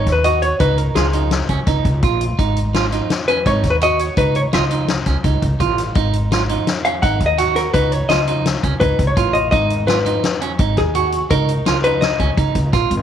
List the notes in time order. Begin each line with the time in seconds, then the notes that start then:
Already playing: C#5
0.06 D#2, kick, snare, closed hi-hat
0.12 B4
0.24 F#4 D#5, closed hi-hat
0.42 C#5, closed hi-hat
0.60 C#2 D#4 B4, kick, closed hi-hat
0.78 A#4, closed hi-hat
0.95 C#2 F4 G#4, snare, closed hi-hat
1.13 D#4, closed hi-hat
1.31 snare, closed hi-hat
1.49 C#2 C#4, kick, closed hi-hat
1.67 C#2 D#4, kick, snare, closed hi-hat
1.85 C#2, kick, closed hi-hat
2.03 A#1 F4, kick, closed hi-hat
2.21 closed hi-hat
2.39 G#1 D#4, kick, closed hi-hat
2.57 closed hi-hat
2.74 F4, snare, closed hi-hat
2.92 D#4, snare, closed hi-hat
3.10 snare, closed hi-hat
3.28 C#4 B4, closed hi-hat
3.46 G#1 D#4 C#5, kick, snare, closed hi-hat
3.64 D#2, kick, snare, closed hi-hat
3.70 B4
3.81 F#4 D#5, closed hi-hat
3.99 C#5, closed hi-hat
4.17 C#2 D#4 B4, kick, closed hi-hat
4.35 C#5, closed hi-hat
4.53 C#2 F4 D#5, snare, closed hi-hat
4.71 D#4, closed hi-hat
4.88 snare, closed hi-hat
5.06 C#2 C#4, kick, snare, closed hi-hat
5.24 C#2 D#4, kick, closed hi-hat
5.42 C#2, kick, closed hi-hat
5.60 A1 F4, kick, closed hi-hat
5.78 snare, closed hi-hat
5.95 G#1 D#4, kick, closed hi-hat
6.13 closed hi-hat
6.32 F4, snare, closed hi-hat
6.49 D#4, closed hi-hat
6.67 snare, closed hi-hat
6.85 C#4 F5, closed hi-hat
7.02 G#1 D#4 F#5, kick, closed hi-hat
7.20 D#2, kick, closed hi-hat
7.26 D#5
7.38 F#4 F#5, snare, closed hi-hat
7.56 A#4, snare, closed hi-hat
7.74 C#2 D#4 B4, kick, closed hi-hat
7.92 C#5, closed hi-hat
8.09 C#2 F4 D#5, snare, closed hi-hat
8.28 D#4, closed hi-hat
8.46 snare, closed hi-hat
8.63 C#2 C#4, kick, closed hi-hat
8.80 C#2 D#4 B4, kick, closed hi-hat
8.99 C#2, kick, closed hi-hat
9.07 C#5
9.17 A1 F4, kick, closed hi-hat
9.33 D#5, closed hi-hat
9.51 G#1 D#4 D#5, kick, closed hi-hat
9.70 closed hi-hat
9.87 F4 B4, snare, closed hi-hat
10.06 D#4, closed hi-hat
10.24 snare, closed hi-hat
10.41 C#4, closed hi-hat
10.59 G#1 D#4, kick, closed hi-hat
10.77 D#2 G#4, kick, snare, closed hi-hat
10.95 F#4, closed hi-hat
11.12 closed hi-hat
11.30 C#2 D#4 A#4, kick, closed hi-hat
11.49 closed hi-hat
11.66 C#2 F4, snare, closed hi-hat
11.84 D#4 B4, closed hi-hat
12.01 D#5, snare, closed hi-hat
12.19 C#2 C#4, kick, closed hi-hat
12.37 C#2 D#4, kick, closed hi-hat
12.55 C#2, kick, closed hi-hat
12.73 A#1 F4, kick, snare, closed hi-hat
12.91 G#1, closed hi-hat